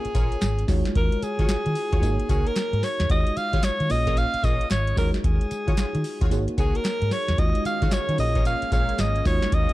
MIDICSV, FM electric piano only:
0, 0, Header, 1, 2, 480
1, 0, Start_track
1, 0, Key_signature, -5, "minor"
1, 0, Tempo, 535714
1, 855, Time_signature, 4, 2, 24, 8
1, 8718, End_track
2, 0, Start_track
2, 0, Title_t, "FM electric piano"
2, 0, Program_c, 0, 5
2, 0, Control_c, 0, 64, 127
2, 0, Note_on_c, 0, 58, 67
2, 0, Note_on_c, 0, 61, 64
2, 0, Note_on_c, 0, 65, 62
2, 0, Note_on_c, 0, 68, 63
2, 0, Note_on_c, 0, 73, 78
2, 590, Note_off_c, 0, 58, 0
2, 593, Note_off_c, 0, 61, 0
2, 595, Note_off_c, 0, 65, 0
2, 598, Note_off_c, 0, 68, 0
2, 601, Note_off_c, 0, 73, 0
2, 603, Note_on_c, 0, 56, 81
2, 608, Note_on_c, 0, 63, 76
2, 613, Note_on_c, 0, 65, 79
2, 619, Note_on_c, 0, 66, 78
2, 623, Note_on_c, 0, 73, 95
2, 627, Control_c, 0, 64, 0
2, 810, Control_c, 0, 64, 127
2, 1785, Note_off_c, 0, 56, 0
2, 1788, Note_off_c, 0, 63, 0
2, 1790, Note_off_c, 0, 65, 0
2, 1793, Note_off_c, 0, 66, 0
2, 1795, Note_off_c, 0, 73, 0
2, 1805, Note_on_c, 0, 58, 84
2, 1810, Note_on_c, 0, 63, 77
2, 1814, Note_on_c, 0, 66, 72
2, 1821, Note_on_c, 0, 68, 73
2, 1827, Control_c, 0, 64, 0
2, 1827, Note_on_c, 0, 73, 84
2, 1994, Control_c, 0, 64, 127
2, 2751, Note_off_c, 0, 58, 0
2, 2753, Note_off_c, 0, 63, 0
2, 2756, Note_off_c, 0, 66, 0
2, 2759, Note_off_c, 0, 68, 0
2, 2762, Note_off_c, 0, 73, 0
2, 2769, Note_on_c, 0, 56, 69
2, 2772, Note_on_c, 0, 63, 66
2, 2775, Note_on_c, 0, 65, 65
2, 2778, Note_on_c, 0, 66, 67
2, 2780, Note_on_c, 0, 73, 80
2, 2786, Control_c, 0, 64, 0
2, 2920, Control_c, 0, 64, 127
2, 3484, Note_off_c, 0, 65, 0
2, 3485, Note_on_c, 0, 58, 73
2, 3490, Note_on_c, 0, 61, 66
2, 3492, Note_off_c, 0, 56, 0
2, 3494, Note_off_c, 0, 63, 0
2, 3495, Note_off_c, 0, 73, 0
2, 3495, Note_on_c, 0, 65, 67
2, 3496, Note_off_c, 0, 66, 0
2, 3501, Note_on_c, 0, 68, 58
2, 3505, Control_c, 0, 64, 0
2, 3506, Note_on_c, 0, 73, 77
2, 3666, Control_c, 0, 64, 127
2, 4431, Note_off_c, 0, 58, 0
2, 4433, Note_off_c, 0, 61, 0
2, 4436, Note_off_c, 0, 65, 0
2, 4439, Note_off_c, 0, 68, 0
2, 4441, Note_off_c, 0, 73, 0
2, 4443, Note_on_c, 0, 56, 76
2, 4448, Note_on_c, 0, 63, 64
2, 4453, Note_on_c, 0, 65, 62
2, 4459, Note_on_c, 0, 66, 65
2, 4465, Note_on_c, 0, 73, 79
2, 4466, Control_c, 0, 64, 0
2, 4649, Control_c, 0, 64, 127
2, 5625, Note_off_c, 0, 56, 0
2, 5627, Note_off_c, 0, 63, 0
2, 5630, Note_off_c, 0, 65, 0
2, 5633, Note_off_c, 0, 66, 0
2, 5636, Note_off_c, 0, 73, 0
2, 5648, Note_on_c, 0, 58, 81
2, 5653, Note_on_c, 0, 63, 70
2, 5657, Note_on_c, 0, 66, 78
2, 5664, Note_on_c, 0, 68, 80
2, 5667, Control_c, 0, 64, 0
2, 5669, Note_on_c, 0, 73, 90
2, 5803, Control_c, 0, 64, 127
2, 6592, Note_off_c, 0, 58, 0
2, 6595, Note_off_c, 0, 63, 0
2, 6597, Note_off_c, 0, 66, 0
2, 6600, Note_off_c, 0, 68, 0
2, 6603, Note_off_c, 0, 73, 0
2, 6609, Note_on_c, 0, 56, 75
2, 6612, Note_on_c, 0, 63, 62
2, 6613, Note_on_c, 0, 65, 61
2, 6617, Note_on_c, 0, 66, 69
2, 6618, Note_on_c, 0, 73, 76
2, 6628, Control_c, 0, 64, 0
2, 6786, Control_c, 0, 64, 127
2, 7323, Note_on_c, 0, 58, 63
2, 7324, Note_off_c, 0, 65, 0
2, 7328, Note_on_c, 0, 61, 61
2, 7332, Note_off_c, 0, 56, 0
2, 7333, Note_off_c, 0, 63, 0
2, 7334, Note_off_c, 0, 73, 0
2, 7335, Note_on_c, 0, 65, 62
2, 7336, Note_off_c, 0, 66, 0
2, 7341, Note_on_c, 0, 68, 60
2, 7345, Note_on_c, 0, 73, 76
2, 7347, Control_c, 0, 64, 0
2, 7491, Control_c, 0, 64, 127
2, 8270, Note_off_c, 0, 58, 0
2, 8272, Note_off_c, 0, 61, 0
2, 8276, Note_off_c, 0, 65, 0
2, 8279, Note_off_c, 0, 68, 0
2, 8281, Note_off_c, 0, 73, 0
2, 8285, Note_on_c, 0, 56, 70
2, 8289, Note_on_c, 0, 63, 65
2, 8295, Note_on_c, 0, 65, 62
2, 8300, Note_on_c, 0, 66, 62
2, 8305, Control_c, 0, 64, 0
2, 8306, Note_on_c, 0, 73, 75
2, 8444, Control_c, 0, 64, 127
2, 8718, Note_off_c, 0, 56, 0
2, 8718, Note_off_c, 0, 63, 0
2, 8718, Note_off_c, 0, 65, 0
2, 8718, Note_off_c, 0, 66, 0
2, 8718, Note_off_c, 0, 73, 0
2, 8718, End_track
0, 0, End_of_file